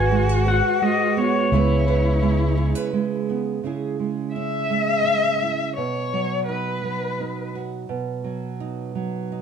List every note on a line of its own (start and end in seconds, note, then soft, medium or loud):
0.00 0.60 G#1 medium
0.00 1.52 G#2 medium
0.00 0.11 F#4 medium
0.00 1.53 F#4 loud
0.00 0.28 B4 medium
0.00 0.47 B4 medium
0.00 0.48 G#5 medium
0.11 0.81 G#3 medium
0.11 0.29 D#4 medium
0.29 1.52 F#4 soft
0.46 1.48 B4 medium
0.46 1.34 C#5 medium
0.46 0.83 F#5 medium
0.82 1.53 G#3 medium
0.82 1.18 D#5 medium
1.17 1.52 B3 medium
1.17 2.90 C#5 medium
1.52 2.72 C#2 medium
1.52 3.62 C#3 medium
1.52 2.21 G#3 medium
1.52 3.28 B3 medium
1.52 3.28 E4 medium
1.52 2.22 E4 medium
1.52 1.87 B4 medium
1.88 2.57 B4 medium
2.22 2.92 G#3 medium
2.22 3.60 E4 medium
2.57 2.75 G#4 medium
2.75 3.64 B4 medium
2.93 3.60 G#3 medium
3.29 3.64 B3 soft
3.64 5.76 C#3 medium
3.64 3.98 G#3 soft
3.64 4.36 C#4 soft
3.64 5.42 E4 soft
3.64 5.78 G#4 soft
4.00 4.69 G#3 soft
4.34 5.05 C#4 soft
4.34 5.72 E5 medium
4.70 5.72 G#3 soft
5.06 5.73 C#4 soft
5.43 5.73 E4 soft
5.77 7.85 B2 soft
5.77 6.43 C#5 medium
6.13 6.83 F#3 soft
6.48 7.19 D#4 soft
6.48 7.50 B4 medium
6.84 8.23 F#3 soft
7.20 7.86 D#4 soft
7.55 7.86 F#4 soft
7.89 9.42 B2 medium
8.24 8.94 F#3 soft
8.60 9.31 D#4 soft
8.95 9.42 F#3 soft
9.32 9.42 D#4 soft